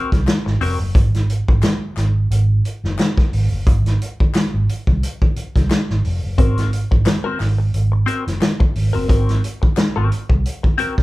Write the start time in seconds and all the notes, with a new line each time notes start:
Already playing: A#4
0.12 C2, kick, snare, closed hi-hat
0.27 snare, clap, closed hi-hat
0.46 G#1, muted clean electric guitar stroke, snare
0.61 F1 C4 F#4 A#4, open hi-hat
0.80 F#1, muted clean electric guitar stroke
0.95 G#1, kick, closed hi-hat
1.14 snare, closed hi-hat
1.30 closed hi-hat
1.48 G#1, kick
1.62 snare, clap, closed hi-hat
1.97 G#1, snare, clap, closed hi-hat
2.31 G#1, closed hi-hat
2.65 closed hi-hat
2.84 F#1, snare
2.99 snare, clap, closed hi-hat
3.18 kick, snare
3.33 G#1, open hi-hat
3.52 F#1
3.67 G#1, kick, closed hi-hat
3.86 snare, closed hi-hat
4.02 closed hi-hat
4.20 muted fingered electric bass stroke, kick
4.34 snare, clap, closed hi-hat
4.54 G#1
4.69 closed hi-hat
4.87 C2, kick
5.03 closed hi-hat
5.22 kick
5.36 muted fingered electric bass stroke, closed hi-hat
5.56 C2, kick, snare, closed hi-hat
5.70 snare, clap, closed hi-hat
5.90 G#1, snare
6.05 F1, open hi-hat
6.24 F#1
6.38 G#1 C4 F#4 A#4, kick, closed hi-hat
6.57 snare, closed hi-hat
6.73 closed hi-hat
6.91 G#1, muted clean electric guitar stroke, kick
7.05 muted clean electric guitar stroke, snare, clap, closed hi-hat
7.24 C4 F#4 A#4
7.40 G#1, muted clean electric guitar stroke, snare, clap, open hi-hat
7.58 muted clean electric guitar stroke
7.74 G#1, closed hi-hat
7.92 muted clean electric guitar stroke
8.06 C4 F#4 A#4, closed hi-hat
8.27 F#1, muted clean electric guitar stroke, snare, closed hi-hat
8.41 muted clean electric guitar stroke, snare, clap, closed hi-hat
8.60 muted clean electric guitar stroke, kick
8.75 G#1, open hi-hat
8.93 F#1 C4 F#4 A#4
9.08 G#1 C4 F#4 A#4, kick, closed hi-hat
9.29 snare, closed hi-hat
9.44 closed hi-hat
9.62 muted clean electric guitar stroke, kick
9.77 muted clean electric guitar stroke, snare, clap, closed hi-hat
9.96 G#1 C4 F#4 A#4
10.11 muted clean electric guitar stroke, closed hi-hat
10.29 C2, muted clean electric guitar stroke, kick
10.46 closed hi-hat
10.63 muted clean electric guitar stroke, kick
10.78 C4 F#4 A#4, muted fingered electric bass stroke, closed hi-hat
10.97 C2, muted clean electric guitar stroke, kick, snare